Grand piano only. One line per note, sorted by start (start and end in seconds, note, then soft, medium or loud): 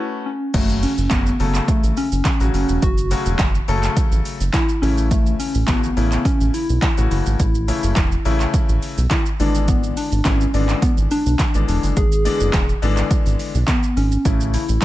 0.00 0.27 A3 medium
0.00 0.27 C#4 medium
0.00 0.27 F#4 medium
0.00 0.28 B4 loud
0.54 0.90 C#3 medium
0.54 0.90 F#3 medium
0.54 0.90 A3 medium
0.54 0.90 C#4 medium
0.54 0.90 F#4 medium
1.11 1.30 C#3 medium
1.11 1.30 F#3 medium
1.11 1.30 A3 medium
1.11 1.30 C#4 medium
1.11 1.30 F#4 medium
1.40 2.03 C#3 medium
1.40 2.03 F#3 medium
1.40 2.03 A3 medium
1.40 2.03 C#4 medium
1.40 2.03 A4 medium
2.40 2.85 C#3 medium
2.40 2.85 F#3 medium
2.40 2.85 A3 medium
2.40 2.85 C#4 medium
2.40 2.85 F#4 medium
3.11 3.47 C#3 medium
3.11 3.47 F#3 medium
3.11 3.48 A3 medium
3.11 3.48 C#4 medium
3.11 3.48 F#4 medium
3.68 4.41 C#3 medium
3.68 4.41 F#3 medium
3.68 4.41 A3 medium
3.68 4.41 C#4 medium
3.68 4.41 A4 loud
4.82 5.52 C#3 medium
4.82 5.52 E3 medium
4.82 5.52 A3 medium
4.82 5.52 C#4 medium
4.82 5.52 E4 medium
5.68 5.87 C#3 medium
5.68 5.87 E3 medium
5.68 5.87 A3 medium
5.68 5.87 C#4 medium
5.68 5.87 F#4 medium
5.97 6.60 C#3 medium
5.97 6.60 E3 medium
5.97 6.60 A3 medium
5.97 6.60 C#4 medium
5.97 6.60 E4 medium
6.97 7.42 C#3 medium
6.97 7.42 E3 medium
6.97 7.42 A3 medium
6.97 7.42 C#4 medium
6.97 7.42 F#4 medium
7.68 8.04 C#3 medium
7.68 8.05 E3 medium
7.68 8.05 A3 medium
7.68 8.05 C#4 medium
7.68 8.05 E4 medium
8.25 8.98 C#3 medium
8.25 8.98 E3 medium
8.25 8.98 A3 medium
8.25 8.98 C#4 medium
8.25 8.98 E4 loud
9.40 10.09 D3 medium
9.40 10.09 E3 medium
9.40 10.09 G#3 medium
9.40 10.09 B3 medium
9.40 10.09 D4 medium
10.25 10.44 D3 medium
10.25 10.44 E3 medium
10.25 10.44 G#3 medium
10.25 10.44 B3 medium
10.25 10.44 E4 medium
10.54 11.17 D3 medium
10.54 11.17 E3 medium
10.54 11.17 G#3 medium
10.54 11.17 B3 medium
10.54 11.17 D4 medium
11.55 11.99 D3 medium
11.55 11.99 E3 medium
11.55 11.99 G#3 medium
11.55 11.99 B3 medium
11.55 11.99 D4 medium
12.25 12.62 D3 medium
12.25 12.62 E3 medium
12.25 12.62 G#3 medium
12.25 12.62 B3 medium
12.25 12.62 D4 loud
12.82 13.55 D3 medium
12.82 13.55 E3 medium
12.82 13.55 G#3 medium
12.82 13.55 B3 medium
12.82 13.55 D4 loud
14.25 14.62 C#3 medium
14.25 14.62 E3 medium
14.25 14.62 A3 medium
14.25 14.62 C#4 medium
14.25 14.62 E4 medium